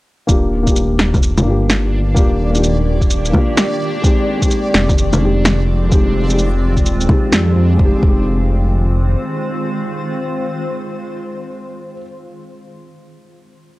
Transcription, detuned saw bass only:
0.29 D#1
1.46 G1
2.16 D#1
4.74 F1
5.92 F1
6.85 D#1
7.32 F2
7.56 F2
7.79 F1
8.03 F1

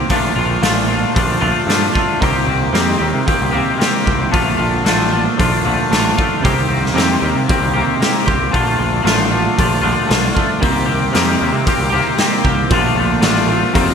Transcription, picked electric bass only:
0.10 A#1
0.36 A#1
0.62 A1
1.16 A#1
1.41 A#1
1.67 G2
2.22 C2
2.47 C2
2.73 F2
3.00 D#2
3.13 C3
3.41 C2
4.07 C2
4.33 A#1
4.60 A#1
4.85 A1
5.40 A#1
5.66 A#1
5.91 A1
6.44 C2
6.69 C2
6.94 F2
7.22 D#2
7.35 C3
7.60 C2
8.27 C2
8.54 A#1
8.79 A#1
9.05 A1
9.59 A#1
9.83 A#1
10.10 B1
10.63 C2
10.87 C2
11.15 F2
11.41 D#2
11.53 C3
11.78 C2
12.45 C2
12.71 A#1
12.95 A#1
13.20 A1
13.75 F1

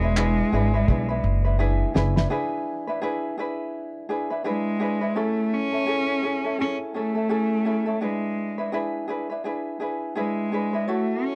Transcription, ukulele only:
0.02 D4 E4 B4
0.16 D4 E4 G#4 B4
0.52 D4 E4 G#4 B4
0.74 D4 E4 B4
0.88 D4 E4 G#4 B4
1.09 D4 E4 B4
1.45 D4 E4 B4
1.59 D4 E4 G#4 B4
1.94 D4 E4 G#4 B4
2.16 D4 E4 B4
2.30 D4 E4 G#4 B4
2.87 D4 E4 B4
3.02 D4 E4 G#4 B4
3.38 D4 E4 G#4 B4
4.09 D4 E4 G#4 B4
4.30 D4 E4 B4
4.44 D4 E4 G#4 B4
4.79 D4 E4 G#4 B4
5.01 D4 E4 B4
5.15 C#4 E4 G#4 A4
5.72 C#4 E4 A4
5.86 C#4 E4 G#4 A4
6.22 C#4 E4 G#4 A4
6.44 C#4 E4 A4
6.58 C#4 E4 G#4 A4
6.94 C#4 E4 G#4 A4
7.15 C#4 E4 A4
7.29 C#4 E4 G#4 A4
7.65 C#4 E4 G#4 A4
7.86 C#4 E4 A4
8.01 D4 E4 G#4 B4
8.58 D4 E4 B4
8.72 D4 E4 G#4 B4
9.08 D4 E4 G#4 B4
9.30 D4 E4 B4
9.44 D4 E4 G#4 B4
9.80 D4 E4 G#4 B4
10.15 D4 E4 G#4 B4
10.52 D4 E4 G#4 B4
10.73 D4 E4 B4
10.88 E4 F#4 A4 C#5

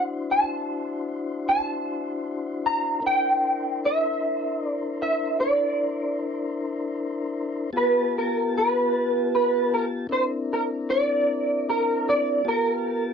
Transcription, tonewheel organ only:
Already playing: D4 E4 F#4 C5
3.01 D4 E4 A#4 C5
7.73 B3 F4 G4 A5
10.09 C4 D4 E4 A#4
12.45 B3 F4 G4 A5

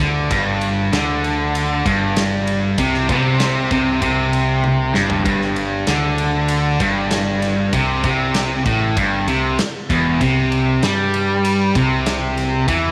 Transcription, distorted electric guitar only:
0.00 D3
0.31 G2
0.93 D3
1.85 G2
2.78 C3
3.10 C3
3.72 C3
4.02 C3
4.93 G2
5.25 G2
5.87 D3
6.80 G2
7.73 C3
8.04 C3
8.66 A2
8.97 G2
9.28 C3
9.59 muted distorted electric guitar stroke
9.89 E2
10.21 C3
10.83 G3
11.76 C3
12.68 E3

